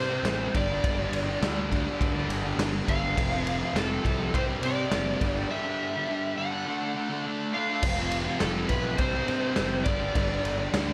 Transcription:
Already playing: C3 G3 C5
0.09 G3 C4
0.23 A1 C3 G3, snare, ride
0.28 C4
0.53 G1 G2 D3 G3 D5, kick, ride
0.68 D3 G3
0.83 G1 G2 D3 G3, kick, ride
0.98 D3 G3
1.12 G1, ride
1.27 D3 G3
1.40 D2 G2 D3 G3, snare, ride
1.70 G2 D3 G3, kick, ride
1.84 D3 G3
2.00 D2, kick, ride
2.13 D3 G3
2.28 G1 G2 D3 G3, ride
2.42 D3 G3
2.55 G1 G2 D3 G3, snare
2.59 ride
2.86 G1 G2 D3 G3, kick, ride
2.90 F5
3.01 D3 G3
3.16 F1 F2 C3 F3, kick, ride
3.30 C3 F3
3.47 ride
3.59 C3 F3
3.73 F1 F2 C3 F3 A4, snare, ride
4.03 C2 F2 C3 F3, kick, ride
4.17 C3 F3
4.32 C2 C3 G3 C4 C5, kick, ride
4.46 G3 C4
4.62 C3 G3 C4 D5, ride
4.76 G3 C4
4.91 F#1 C3 G3 C4, snare, ride
5.21 G1 G2 D3 G3, kick, ride
5.35 D3 G3
5.49 G2 D3 G3 E5
5.63 D3 G3
5.93 D3 G3
6.07 G2 D3 G3
6.36 G2 D3 G3 F#5
6.51 D3 G3
6.65 D3 A3 D4
6.81 A3 D4
6.94 D3 A3 D4
7.09 A3 D4
7.24 D3 A3 D4
7.53 D3 A3 D4 F5
7.68 A3 D4
7.82 F1 F2 C3 F3, kick, crash
7.96 C3 F3
8.11 ride
8.24 C3 F3
8.39 F1 F2 C3 F3 A4, snare, ride
8.68 B1 F2 C3 F3 B4, kick, ride
8.84 C3 F3
8.98 C2 C3 G3 C4 C5, kick, ride
9.13 G3 C4
9.27 C3 G3 C4, ride
9.42 G3 C4
9.56 F#1 C3 G3 C4, snare, ride
9.84 G1 G2 D3 D5, kick, ride
9.88 G3
10.00 D3 G3
10.14 G1 G2 D3 G3, kick, ride
10.28 D3 G3
10.44 G1, ride
10.57 D3 G3
10.71 D2 G2 D3 G3, snare, ride

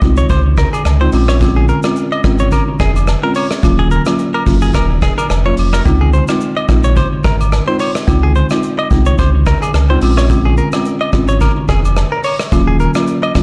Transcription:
0.02 C2 G#3 C4 D#4 F4, kick, shaker
0.17 C#5, shaker
0.29 C#2 C5, kick, high agogo, shaker
0.57 A#4, kick, cross-stick, shaker
0.73 G#4, high agogo, shaker
0.85 C#2, cross-stick, low woodblock, shaker
1.00 G#3 C4 D#4 F4 C5
1.12 A#1 G#3 C4 C#4 F4, open hi-hat, high agogo, shaker
1.28 C#5, cross-stick, shaker
1.41 G#3 C4 C#4 F4, kick, hi-hat pedal, high agogo, shaker
1.56 G#4
1.68 A#4, shaker
1.83 G#3 C4 C#4 F4, cross-stick, high agogo, shaker
1.96 shaker
2.12 D#5, high agogo
2.24 G#1 G#3 C4 C#4 F4, kick, cross-stick, shaker
2.39 C#5, shaker
2.51 A#4, kick, high agogo, shaker
2.79 F1 G#4, kick, cross-stick, shaker
2.96 high agogo, shaker
3.07 cross-stick, low woodblock, shaker
3.23 G#3 C4 C#4 F4 A#4
3.35 C#5, open hi-hat, high agogo, shaker
3.51 cross-stick, shaker
3.63 D#1 F#3 A#3 C#4 F4, kick, hi-hat pedal, high agogo, shaker
3.79 G#4
3.91 A#4, shaker
4.06 F#3 A#3 C#4 F4, cross-stick, high agogo, shaker
4.19 shaker
4.34 A#4, high agogo
4.46 F#1 F#3 A#3 C#4 F4, kick, open hi-hat, shaker
4.61 G#4, shaker
4.74 D#1 A#4, kick, cross-stick, hi-hat pedal, high agogo, shaker
5.02 G#4, kick, cross-stick, shaker
5.18 A#4, high agogo, shaker
5.30 F1, cross-stick, low woodblock, shaker
5.45 F#3 A#3 C#4 F4 C#5
5.57 F1, open hi-hat, high agogo, shaker
5.73 A#4, cross-stick, shaker
5.85 C#2 G#3 C4 D#4 F4, kick, hi-hat pedal, high agogo, shaker
6.01 G#4
6.13 C5, shaker
6.28 G#3 C4 D#4 F4, cross-stick, high agogo, shaker
6.41 shaker
6.57 D#5, high agogo
6.69 A#1 G#3 C4 D#4 F4, kick, cross-stick, shaker
6.83 C#5, shaker
6.96 C5, kick, high agogo, shaker
7.24 G#1 A#4, kick, cross-stick, shaker
7.41 high agogo, shaker
7.52 cross-stick, low woodblock, shaker
7.67 G#3 C4 D#4 F4 C5
7.79 C#5, open hi-hat, high agogo, shaker
7.95 cross-stick, shaker
8.07 C#2 G#3 C4 D#4 F4, kick, hi-hat pedal, high agogo, shaker
8.23 G#4
8.35 C5, shaker
8.50 G#3 C4 D#4 F4, cross-stick, high agogo, shaker
8.63 shaker
8.79 D#5, high agogo
8.91 C2 G#3 C4 D#4 F4, kick, shaker
9.06 C#5, shaker
9.18 C#2 C5, kick, high agogo, shaker
9.46 A#4, kick, cross-stick, shaker
9.62 G#4, high agogo, shaker
9.74 C#2, cross-stick, low woodblock, shaker
9.89 G#3 C4 D#4 F4 C5
10.01 A#1 G#3 C4 C#4 F4, open hi-hat, high agogo, shaker
10.17 C#5, cross-stick, shaker
10.30 G#3 C4 C#4 F4, kick, hi-hat pedal, high agogo, shaker
10.45 G#4
10.57 A#4, shaker
10.72 G#3 C4 C#4 F4, cross-stick, high agogo, shaker
10.85 shaker
11.01 D#5, high agogo
11.13 G#1 G#3 C4 C#4 F4, kick, cross-stick, shaker
11.28 C#5, shaker
11.41 A#4, kick, high agogo, shaker
11.68 F1 G#4, kick, cross-stick, shaker
11.85 high agogo, shaker
11.97 cross-stick, low woodblock, shaker
12.12 A#4
12.24 C#5, open hi-hat, high agogo, shaker
12.39 cross-stick, shaker
12.52 D#1 F#3 A#3 C#4 F4, kick, hi-hat pedal, high agogo, shaker
12.67 G#4
12.80 A#4, shaker
12.94 F#3 A#3 C#4 F4, cross-stick, high agogo, shaker
13.07 shaker
13.23 D#5, high agogo
13.35 F#1 F#3 A#3 C#4 F4, kick, cross-stick, open hi-hat, shaker

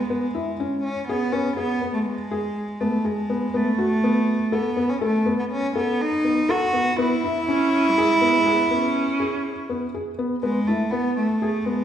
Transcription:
Already playing: G#3
0.10 B3
0.35 E4
0.60 C#4
0.84 C#4
1.08 B3 G#4
1.32 B3 C#4
1.57 B3 G#4
1.82 B3
1.94 A3
2.06 G#3
2.31 G#4
2.81 A3 B3
3.05 G#3 G#4
3.30 B3
3.54 A3 B3
3.78 F#4
4.04 B3
4.52 B3 A4
4.77 B3
4.89 C#4
5.01 A3 A4
5.26 B3
5.39 B3
5.52 C#4
5.76 B3 A4
6.01 D#4
6.24 B3
6.49 F#4 A4
6.73 B3
6.99 B3 E4
7.24 E4
7.47 C#4
7.89 G3
7.96 G#3 G#4
8.21 B3
8.45 B3 G#4
8.71 B3 C#4
9.20 G#4
9.70 B3
9.94 G#4
10.19 B3
10.43 G#3 B3
10.68 A3 E4
10.91 B3
11.16 A3
11.42 G#4
11.65 G#3 B3

